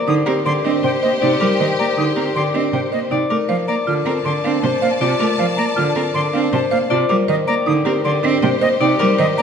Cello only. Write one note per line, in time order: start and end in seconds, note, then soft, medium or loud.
0.07 0.22 D3 loud
0.26 0.40 C4 medium
0.46 0.60 D3 medium
0.65 0.79 C4 loud
0.84 0.98 C3 medium
1.03 1.17 A#3 medium
1.22 1.36 C3 loud
1.41 1.55 G3 medium
1.60 1.74 D#3 medium
1.79 1.93 A#3 medium
1.97 2.12 D3 medium
2.16 2.30 C4 medium
2.35 2.50 D3 medium
2.54 2.69 C4 medium
2.73 2.87 C3 medium
2.92 3.06 A#3 medium
3.11 3.25 C3 medium
3.30 3.44 A3 medium
3.49 3.63 F3 medium
3.68 3.82 A#3 medium
3.86 4.01 D3 medium
4.05 4.20 C4 medium
4.25 4.39 D3 medium
4.44 4.58 C4 loud
4.63 4.77 C3 medium
4.82 4.96 A#3 medium
5.00 5.15 C3 loud
5.20 5.34 A3 medium
5.39 5.53 F3 medium
5.57 5.72 A#3 medium
5.77 5.91 D3 medium
5.96 6.10 C4 medium
6.15 6.29 D3 medium
6.34 6.48 C4 loud
6.53 6.67 C3 medium
6.72 6.86 A#3 medium
6.91 7.05 C3 loud
7.10 7.24 G3 medium
7.29 7.43 D#3 medium
7.48 7.62 A#3 medium
7.67 7.81 D3 loud
7.85 8.00 C4 medium
8.05 8.19 D3 medium
8.23 8.38 C4 loud
8.42 8.57 C3 medium
8.61 8.76 A#3 medium
8.81 8.95 C3 loud
9.00 9.14 G3 loud
9.19 9.33 D#3 medium
9.37 9.42 A#3 medium